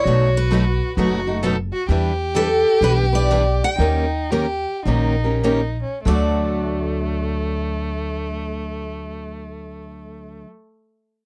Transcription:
Already playing: C#5
0.04 B1 B2 F#3 A3 D#4 F#4 B4
0.37 B4
0.51 B2 F#3 A3 D#4 F#4 B4
0.97 F#1 B2 F#3 A3 D#4 F#4 B4
1.27 A3 D#4 F#4
1.43 B2 F#3 A3 D#4 F#4 A4 B4
1.73 F#4
1.89 E2 E3 G3 D4 E4 G4 B4
2.35 E3 G3 D4 E4 A4 B4
2.81 B1 E3 G3 D4 E4 B4
3.13 D4 E4 B4 D5
3.31 E3 G3 D4 E4 B4
3.64 G5
3.79 D#2 D#3 A#3 C#4 D#4 G4 A#4
4.31 D#3 A#3 C#4 G4 A#4
4.78 F#5
4.86 A#1 D#3 A#3 C#4 D#4 G4 A#4
5.24 C#4 G4 A#4
5.44 D#3 A#3 C#4 D#4 G4 A#4
5.83 C#4
6.05 D2 D3 F#3 A3 F#4 D5
6.11 A4

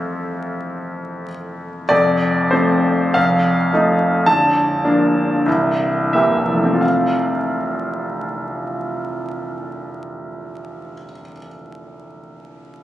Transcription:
Already playing: F2 F3 A3 C4 A4 C5 F5
1.89 F1 F2 D5
2.51 F3 A3 C4 C5
3.14 F1 F2 F5
3.73 F3 A3 D#4
4.26 A#0 A#1 A5
4.85 F3 A#3 D4
5.46 C1 C2
6.13 E3 A#3 G4 E5
6.29 F1
6.38 C2
6.47 F3
6.56 A3
6.65 C4
6.74 F4
6.81 F5

